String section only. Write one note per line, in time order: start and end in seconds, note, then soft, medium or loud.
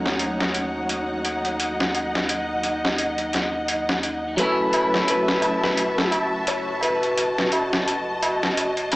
0.00 4.35 D#4 medium
0.00 1.57 C#5 medium
0.00 4.35 F#5 medium
1.61 4.37 D#5 medium
4.38 8.96 F#4 medium
4.38 7.15 E5 medium
4.38 8.96 A5 medium
7.18 8.96 D#5 medium